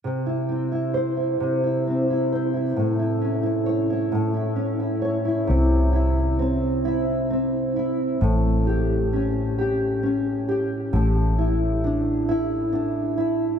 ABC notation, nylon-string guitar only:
X:1
M:6/8
L:1/16
Q:3/8=44
K:C
V:1 name="Nylon-string guitar"
C, E C E c E C, E C E c E | A,, E ^C E ^c E A,, E C E c E | C,2 E2 C2 E2 C2 E2 | A,,2 G2 ^C2 G2 C2 G2 |
A,,2 E2 D2 E2 D2 E2 |]